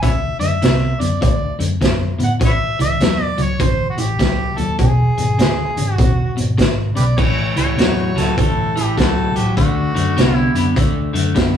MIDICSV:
0, 0, Header, 1, 5, 480
1, 0, Start_track
1, 0, Key_signature, 3, "major"
1, 0, Tempo, 596421
1, 16, Time_signature, 4, 2, 24, 8
1, 9312, End_track
2, 0, Start_track
2, 0, Title_t, "Harmonica"
2, 0, Program_c, 0, 22
2, 19, Note_on_c, 0, 71, 64
2, 19, Note_on_c, 0, 73, 64
2, 19, Note_on_c, 0, 76, 91
2, 76, Note_off_c, 0, 71, 0
2, 77, Note_off_c, 0, 73, 0
2, 303, Note_off_c, 0, 76, 0
2, 320, Note_on_c, 0, 76, 89
2, 812, Note_on_c, 0, 74, 77
2, 824, Note_off_c, 0, 76, 0
2, 973, Note_off_c, 0, 74, 0
2, 982, Note_on_c, 0, 74, 72
2, 1265, Note_off_c, 0, 74, 0
2, 1801, Note_on_c, 0, 78, 84
2, 1870, Note_off_c, 0, 78, 0
2, 1973, Note_on_c, 0, 71, 74
2, 1973, Note_on_c, 0, 73, 74
2, 1973, Note_on_c, 0, 76, 106
2, 2031, Note_off_c, 0, 73, 0
2, 2034, Note_off_c, 0, 71, 0
2, 2241, Note_off_c, 0, 76, 0
2, 2268, Note_on_c, 0, 76, 100
2, 2606, Note_off_c, 0, 76, 0
2, 2606, Note_on_c, 0, 74, 100
2, 2758, Note_on_c, 0, 73, 90
2, 2770, Note_off_c, 0, 74, 0
2, 2908, Note_on_c, 0, 72, 88
2, 2920, Note_off_c, 0, 73, 0
2, 3135, Note_off_c, 0, 72, 0
2, 3139, Note_on_c, 0, 66, 61
2, 3212, Note_on_c, 0, 67, 90
2, 3224, Note_off_c, 0, 66, 0
2, 3687, Note_on_c, 0, 69, 80
2, 3699, Note_off_c, 0, 67, 0
2, 3852, Note_off_c, 0, 69, 0
2, 3857, Note_on_c, 0, 68, 84
2, 4783, Note_off_c, 0, 68, 0
2, 4783, Note_on_c, 0, 66, 84
2, 5263, Note_off_c, 0, 66, 0
2, 5605, Note_on_c, 0, 67, 62
2, 5605, Note_on_c, 0, 71, 62
2, 5605, Note_on_c, 0, 74, 88
2, 5669, Note_off_c, 0, 67, 0
2, 5675, Note_off_c, 0, 71, 0
2, 5784, Note_on_c, 0, 73, 100
2, 5796, Note_off_c, 0, 74, 0
2, 6086, Note_off_c, 0, 73, 0
2, 6097, Note_on_c, 0, 73, 90
2, 6593, Note_on_c, 0, 69, 77
2, 6605, Note_off_c, 0, 73, 0
2, 6739, Note_off_c, 0, 69, 0
2, 6744, Note_on_c, 0, 69, 83
2, 7053, Note_on_c, 0, 67, 78
2, 7065, Note_off_c, 0, 69, 0
2, 7221, Note_on_c, 0, 69, 84
2, 7233, Note_off_c, 0, 67, 0
2, 7535, Note_on_c, 0, 67, 74
2, 7547, Note_off_c, 0, 69, 0
2, 7696, Note_off_c, 0, 67, 0
2, 7700, Note_on_c, 0, 66, 80
2, 8336, Note_off_c, 0, 66, 0
2, 8336, Note_on_c, 0, 64, 80
2, 8626, Note_off_c, 0, 64, 0
2, 9312, End_track
3, 0, Start_track
3, 0, Title_t, "Clean electric guitar"
3, 0, Program_c, 1, 27
3, 22, Note_on_c, 1, 50, 74
3, 22, Note_on_c, 1, 57, 71
3, 295, Note_off_c, 1, 50, 0
3, 296, Note_off_c, 1, 57, 0
3, 317, Note_on_c, 1, 50, 68
3, 323, Note_on_c, 1, 57, 71
3, 475, Note_off_c, 1, 50, 0
3, 478, Note_off_c, 1, 57, 0
3, 498, Note_on_c, 1, 50, 80
3, 505, Note_on_c, 1, 59, 88
3, 773, Note_off_c, 1, 50, 0
3, 776, Note_off_c, 1, 59, 0
3, 804, Note_on_c, 1, 50, 67
3, 807, Note_on_c, 1, 59, 68
3, 959, Note_off_c, 1, 50, 0
3, 960, Note_off_c, 1, 59, 0
3, 974, Note_on_c, 1, 50, 84
3, 981, Note_on_c, 1, 57, 86
3, 1251, Note_off_c, 1, 50, 0
3, 1254, Note_off_c, 1, 57, 0
3, 1279, Note_on_c, 1, 50, 64
3, 1285, Note_on_c, 1, 57, 78
3, 1436, Note_off_c, 1, 50, 0
3, 1439, Note_off_c, 1, 57, 0
3, 1455, Note_on_c, 1, 50, 74
3, 1458, Note_on_c, 1, 59, 83
3, 1731, Note_off_c, 1, 50, 0
3, 1733, Note_off_c, 1, 59, 0
3, 1759, Note_on_c, 1, 50, 59
3, 1765, Note_on_c, 1, 59, 65
3, 1915, Note_off_c, 1, 50, 0
3, 1919, Note_off_c, 1, 59, 0
3, 1929, Note_on_c, 1, 45, 74
3, 1934, Note_on_c, 1, 52, 73
3, 2208, Note_off_c, 1, 45, 0
3, 2211, Note_off_c, 1, 52, 0
3, 2247, Note_on_c, 1, 45, 66
3, 2249, Note_on_c, 1, 52, 84
3, 2399, Note_off_c, 1, 45, 0
3, 2400, Note_off_c, 1, 52, 0
3, 2419, Note_on_c, 1, 45, 84
3, 2427, Note_on_c, 1, 54, 101
3, 2693, Note_off_c, 1, 45, 0
3, 2697, Note_off_c, 1, 54, 0
3, 2718, Note_on_c, 1, 45, 66
3, 2721, Note_on_c, 1, 54, 80
3, 2875, Note_off_c, 1, 45, 0
3, 2876, Note_off_c, 1, 54, 0
3, 2893, Note_on_c, 1, 45, 73
3, 2896, Note_on_c, 1, 52, 88
3, 3170, Note_off_c, 1, 45, 0
3, 3171, Note_off_c, 1, 52, 0
3, 3201, Note_on_c, 1, 45, 65
3, 3206, Note_on_c, 1, 52, 77
3, 3356, Note_off_c, 1, 45, 0
3, 3359, Note_off_c, 1, 52, 0
3, 3371, Note_on_c, 1, 45, 75
3, 3377, Note_on_c, 1, 54, 91
3, 3649, Note_off_c, 1, 45, 0
3, 3652, Note_off_c, 1, 54, 0
3, 3677, Note_on_c, 1, 45, 60
3, 3682, Note_on_c, 1, 54, 61
3, 3834, Note_off_c, 1, 45, 0
3, 3837, Note_off_c, 1, 54, 0
3, 3851, Note_on_c, 1, 40, 71
3, 3853, Note_on_c, 1, 47, 77
3, 4129, Note_off_c, 1, 40, 0
3, 4130, Note_off_c, 1, 47, 0
3, 4166, Note_on_c, 1, 40, 73
3, 4167, Note_on_c, 1, 47, 79
3, 4318, Note_off_c, 1, 40, 0
3, 4319, Note_off_c, 1, 47, 0
3, 4333, Note_on_c, 1, 40, 86
3, 4337, Note_on_c, 1, 49, 94
3, 4610, Note_off_c, 1, 40, 0
3, 4612, Note_off_c, 1, 49, 0
3, 4645, Note_on_c, 1, 40, 70
3, 4647, Note_on_c, 1, 49, 76
3, 4798, Note_off_c, 1, 40, 0
3, 4799, Note_off_c, 1, 49, 0
3, 4818, Note_on_c, 1, 40, 77
3, 4818, Note_on_c, 1, 47, 75
3, 5092, Note_off_c, 1, 40, 0
3, 5092, Note_off_c, 1, 47, 0
3, 5119, Note_on_c, 1, 40, 66
3, 5125, Note_on_c, 1, 47, 66
3, 5275, Note_off_c, 1, 40, 0
3, 5278, Note_off_c, 1, 47, 0
3, 5291, Note_on_c, 1, 40, 72
3, 5293, Note_on_c, 1, 49, 76
3, 5569, Note_off_c, 1, 40, 0
3, 5570, Note_off_c, 1, 49, 0
3, 5595, Note_on_c, 1, 40, 60
3, 5599, Note_on_c, 1, 49, 66
3, 5753, Note_off_c, 1, 40, 0
3, 5755, Note_off_c, 1, 49, 0
3, 5775, Note_on_c, 1, 45, 75
3, 5778, Note_on_c, 1, 52, 77
3, 6051, Note_off_c, 1, 45, 0
3, 6053, Note_off_c, 1, 52, 0
3, 6086, Note_on_c, 1, 45, 73
3, 6088, Note_on_c, 1, 52, 78
3, 6239, Note_off_c, 1, 45, 0
3, 6240, Note_off_c, 1, 52, 0
3, 6260, Note_on_c, 1, 45, 87
3, 6266, Note_on_c, 1, 54, 94
3, 6534, Note_off_c, 1, 45, 0
3, 6537, Note_off_c, 1, 54, 0
3, 6563, Note_on_c, 1, 45, 65
3, 6567, Note_on_c, 1, 54, 67
3, 6718, Note_off_c, 1, 45, 0
3, 6720, Note_off_c, 1, 54, 0
3, 6739, Note_on_c, 1, 45, 80
3, 6743, Note_on_c, 1, 52, 84
3, 7014, Note_off_c, 1, 45, 0
3, 7015, Note_off_c, 1, 52, 0
3, 7047, Note_on_c, 1, 45, 66
3, 7049, Note_on_c, 1, 52, 73
3, 7199, Note_off_c, 1, 45, 0
3, 7201, Note_off_c, 1, 52, 0
3, 7221, Note_on_c, 1, 45, 79
3, 7225, Note_on_c, 1, 54, 85
3, 7494, Note_off_c, 1, 45, 0
3, 7496, Note_off_c, 1, 54, 0
3, 7531, Note_on_c, 1, 45, 53
3, 7533, Note_on_c, 1, 54, 70
3, 7682, Note_off_c, 1, 45, 0
3, 7683, Note_off_c, 1, 54, 0
3, 7701, Note_on_c, 1, 50, 71
3, 7704, Note_on_c, 1, 57, 82
3, 7975, Note_off_c, 1, 50, 0
3, 7976, Note_off_c, 1, 57, 0
3, 8006, Note_on_c, 1, 50, 70
3, 8010, Note_on_c, 1, 57, 79
3, 8159, Note_off_c, 1, 50, 0
3, 8162, Note_off_c, 1, 57, 0
3, 8181, Note_on_c, 1, 50, 83
3, 8183, Note_on_c, 1, 59, 99
3, 8455, Note_off_c, 1, 50, 0
3, 8456, Note_off_c, 1, 59, 0
3, 8493, Note_on_c, 1, 50, 68
3, 8497, Note_on_c, 1, 59, 70
3, 8643, Note_off_c, 1, 50, 0
3, 8646, Note_off_c, 1, 59, 0
3, 8659, Note_on_c, 1, 50, 73
3, 8665, Note_on_c, 1, 57, 80
3, 8934, Note_off_c, 1, 50, 0
3, 8937, Note_off_c, 1, 57, 0
3, 8960, Note_on_c, 1, 50, 70
3, 8966, Note_on_c, 1, 57, 74
3, 9117, Note_off_c, 1, 50, 0
3, 9120, Note_off_c, 1, 57, 0
3, 9130, Note_on_c, 1, 50, 75
3, 9135, Note_on_c, 1, 59, 82
3, 9312, Note_off_c, 1, 50, 0
3, 9312, Note_off_c, 1, 59, 0
3, 9312, End_track
4, 0, Start_track
4, 0, Title_t, "Fingered electric bass"
4, 0, Program_c, 2, 33
4, 23, Note_on_c, 2, 38, 79
4, 262, Note_off_c, 2, 38, 0
4, 323, Note_on_c, 2, 42, 82
4, 459, Note_off_c, 2, 42, 0
4, 500, Note_on_c, 2, 36, 75
4, 740, Note_off_c, 2, 36, 0
4, 806, Note_on_c, 2, 42, 88
4, 940, Note_off_c, 2, 42, 0
4, 984, Note_on_c, 2, 38, 88
4, 1222, Note_off_c, 2, 38, 0
4, 1279, Note_on_c, 2, 42, 88
4, 1416, Note_off_c, 2, 42, 0
4, 1459, Note_on_c, 2, 42, 89
4, 1699, Note_off_c, 2, 42, 0
4, 1760, Note_on_c, 2, 45, 74
4, 1896, Note_off_c, 2, 45, 0
4, 1935, Note_on_c, 2, 33, 78
4, 2177, Note_off_c, 2, 33, 0
4, 2246, Note_on_c, 2, 37, 80
4, 2380, Note_off_c, 2, 37, 0
4, 2414, Note_on_c, 2, 40, 75
4, 2655, Note_off_c, 2, 40, 0
4, 2720, Note_on_c, 2, 37, 88
4, 2856, Note_off_c, 2, 37, 0
4, 2896, Note_on_c, 2, 31, 85
4, 3137, Note_off_c, 2, 31, 0
4, 3193, Note_on_c, 2, 33, 89
4, 3332, Note_off_c, 2, 33, 0
4, 3375, Note_on_c, 2, 37, 90
4, 3617, Note_off_c, 2, 37, 0
4, 3685, Note_on_c, 2, 39, 78
4, 3819, Note_off_c, 2, 39, 0
4, 3855, Note_on_c, 2, 28, 81
4, 4097, Note_off_c, 2, 28, 0
4, 4163, Note_on_c, 2, 32, 75
4, 4298, Note_off_c, 2, 32, 0
4, 4326, Note_on_c, 2, 38, 72
4, 4571, Note_off_c, 2, 38, 0
4, 4637, Note_on_c, 2, 32, 90
4, 4774, Note_off_c, 2, 32, 0
4, 4818, Note_on_c, 2, 28, 87
4, 5058, Note_off_c, 2, 28, 0
4, 5112, Note_on_c, 2, 32, 84
4, 5251, Note_off_c, 2, 32, 0
4, 5302, Note_on_c, 2, 32, 85
4, 5540, Note_off_c, 2, 32, 0
4, 5596, Note_on_c, 2, 35, 70
4, 5781, Note_off_c, 2, 35, 0
4, 5781, Note_on_c, 2, 33, 85
4, 6020, Note_off_c, 2, 33, 0
4, 6088, Note_on_c, 2, 37, 74
4, 6221, Note_off_c, 2, 37, 0
4, 6249, Note_on_c, 2, 40, 66
4, 6493, Note_off_c, 2, 40, 0
4, 6567, Note_on_c, 2, 37, 87
4, 6701, Note_off_c, 2, 37, 0
4, 6742, Note_on_c, 2, 31, 89
4, 6981, Note_off_c, 2, 31, 0
4, 7054, Note_on_c, 2, 33, 92
4, 7185, Note_off_c, 2, 33, 0
4, 7224, Note_on_c, 2, 37, 84
4, 7463, Note_off_c, 2, 37, 0
4, 7533, Note_on_c, 2, 33, 73
4, 7664, Note_off_c, 2, 33, 0
4, 7704, Note_on_c, 2, 38, 75
4, 7943, Note_off_c, 2, 38, 0
4, 8014, Note_on_c, 2, 42, 73
4, 8145, Note_off_c, 2, 42, 0
4, 8183, Note_on_c, 2, 36, 70
4, 8422, Note_off_c, 2, 36, 0
4, 8487, Note_on_c, 2, 42, 88
4, 8621, Note_off_c, 2, 42, 0
4, 8667, Note_on_c, 2, 38, 93
4, 8904, Note_off_c, 2, 38, 0
4, 8965, Note_on_c, 2, 42, 89
4, 9101, Note_off_c, 2, 42, 0
4, 9142, Note_on_c, 2, 42, 87
4, 9312, Note_off_c, 2, 42, 0
4, 9312, End_track
5, 0, Start_track
5, 0, Title_t, "Drums"
5, 22, Note_on_c, 9, 36, 102
5, 25, Note_on_c, 9, 42, 76
5, 103, Note_off_c, 9, 36, 0
5, 105, Note_off_c, 9, 42, 0
5, 327, Note_on_c, 9, 42, 60
5, 407, Note_off_c, 9, 42, 0
5, 500, Note_on_c, 9, 42, 74
5, 515, Note_on_c, 9, 38, 99
5, 581, Note_off_c, 9, 42, 0
5, 595, Note_off_c, 9, 38, 0
5, 815, Note_on_c, 9, 42, 59
5, 895, Note_off_c, 9, 42, 0
5, 983, Note_on_c, 9, 36, 102
5, 984, Note_on_c, 9, 42, 84
5, 1063, Note_off_c, 9, 36, 0
5, 1065, Note_off_c, 9, 42, 0
5, 1290, Note_on_c, 9, 42, 64
5, 1370, Note_off_c, 9, 42, 0
5, 1461, Note_on_c, 9, 36, 69
5, 1464, Note_on_c, 9, 42, 80
5, 1478, Note_on_c, 9, 38, 94
5, 1541, Note_off_c, 9, 36, 0
5, 1544, Note_off_c, 9, 42, 0
5, 1559, Note_off_c, 9, 38, 0
5, 1768, Note_on_c, 9, 42, 62
5, 1849, Note_off_c, 9, 42, 0
5, 1938, Note_on_c, 9, 42, 84
5, 1939, Note_on_c, 9, 36, 103
5, 2019, Note_off_c, 9, 36, 0
5, 2019, Note_off_c, 9, 42, 0
5, 2253, Note_on_c, 9, 42, 54
5, 2334, Note_off_c, 9, 42, 0
5, 2418, Note_on_c, 9, 42, 74
5, 2433, Note_on_c, 9, 38, 98
5, 2499, Note_off_c, 9, 42, 0
5, 2513, Note_off_c, 9, 38, 0
5, 2720, Note_on_c, 9, 42, 57
5, 2801, Note_off_c, 9, 42, 0
5, 2896, Note_on_c, 9, 36, 103
5, 2896, Note_on_c, 9, 42, 80
5, 2976, Note_off_c, 9, 36, 0
5, 2976, Note_off_c, 9, 42, 0
5, 3202, Note_on_c, 9, 42, 57
5, 3283, Note_off_c, 9, 42, 0
5, 3375, Note_on_c, 9, 36, 74
5, 3375, Note_on_c, 9, 42, 69
5, 3389, Note_on_c, 9, 38, 103
5, 3455, Note_off_c, 9, 42, 0
5, 3456, Note_off_c, 9, 36, 0
5, 3470, Note_off_c, 9, 38, 0
5, 3683, Note_on_c, 9, 42, 55
5, 3764, Note_off_c, 9, 42, 0
5, 3852, Note_on_c, 9, 42, 72
5, 3855, Note_on_c, 9, 36, 91
5, 3933, Note_off_c, 9, 42, 0
5, 3935, Note_off_c, 9, 36, 0
5, 4168, Note_on_c, 9, 42, 51
5, 4248, Note_off_c, 9, 42, 0
5, 4337, Note_on_c, 9, 42, 78
5, 4352, Note_on_c, 9, 38, 106
5, 4418, Note_off_c, 9, 42, 0
5, 4432, Note_off_c, 9, 38, 0
5, 4646, Note_on_c, 9, 42, 66
5, 4726, Note_off_c, 9, 42, 0
5, 4816, Note_on_c, 9, 36, 110
5, 4819, Note_on_c, 9, 42, 75
5, 4897, Note_off_c, 9, 36, 0
5, 4899, Note_off_c, 9, 42, 0
5, 5130, Note_on_c, 9, 42, 54
5, 5211, Note_off_c, 9, 42, 0
5, 5298, Note_on_c, 9, 36, 70
5, 5302, Note_on_c, 9, 42, 81
5, 5316, Note_on_c, 9, 38, 105
5, 5378, Note_off_c, 9, 36, 0
5, 5382, Note_off_c, 9, 42, 0
5, 5397, Note_off_c, 9, 38, 0
5, 5605, Note_on_c, 9, 42, 65
5, 5686, Note_off_c, 9, 42, 0
5, 5778, Note_on_c, 9, 36, 109
5, 5781, Note_on_c, 9, 49, 85
5, 5858, Note_off_c, 9, 36, 0
5, 5861, Note_off_c, 9, 49, 0
5, 6088, Note_on_c, 9, 42, 55
5, 6169, Note_off_c, 9, 42, 0
5, 6265, Note_on_c, 9, 42, 76
5, 6279, Note_on_c, 9, 38, 94
5, 6345, Note_off_c, 9, 42, 0
5, 6360, Note_off_c, 9, 38, 0
5, 6580, Note_on_c, 9, 42, 55
5, 6595, Note_on_c, 9, 38, 29
5, 6661, Note_off_c, 9, 42, 0
5, 6675, Note_off_c, 9, 38, 0
5, 6743, Note_on_c, 9, 36, 102
5, 6746, Note_on_c, 9, 42, 77
5, 6823, Note_off_c, 9, 36, 0
5, 6827, Note_off_c, 9, 42, 0
5, 7057, Note_on_c, 9, 42, 56
5, 7138, Note_off_c, 9, 42, 0
5, 7223, Note_on_c, 9, 36, 72
5, 7228, Note_on_c, 9, 42, 72
5, 7243, Note_on_c, 9, 38, 102
5, 7304, Note_off_c, 9, 36, 0
5, 7309, Note_off_c, 9, 42, 0
5, 7323, Note_off_c, 9, 38, 0
5, 7532, Note_on_c, 9, 42, 58
5, 7612, Note_off_c, 9, 42, 0
5, 7703, Note_on_c, 9, 36, 91
5, 7706, Note_on_c, 9, 42, 76
5, 7783, Note_off_c, 9, 36, 0
5, 7786, Note_off_c, 9, 42, 0
5, 8018, Note_on_c, 9, 42, 49
5, 8098, Note_off_c, 9, 42, 0
5, 8189, Note_on_c, 9, 42, 79
5, 8204, Note_on_c, 9, 38, 104
5, 8270, Note_off_c, 9, 42, 0
5, 8284, Note_off_c, 9, 38, 0
5, 8494, Note_on_c, 9, 42, 62
5, 8575, Note_off_c, 9, 42, 0
5, 8663, Note_on_c, 9, 36, 107
5, 8667, Note_on_c, 9, 42, 81
5, 8743, Note_off_c, 9, 36, 0
5, 8747, Note_off_c, 9, 42, 0
5, 8976, Note_on_c, 9, 42, 62
5, 9056, Note_off_c, 9, 42, 0
5, 9139, Note_on_c, 9, 42, 78
5, 9141, Note_on_c, 9, 36, 76
5, 9154, Note_on_c, 9, 38, 110
5, 9220, Note_off_c, 9, 42, 0
5, 9221, Note_off_c, 9, 36, 0
5, 9234, Note_off_c, 9, 38, 0
5, 9312, End_track
0, 0, End_of_file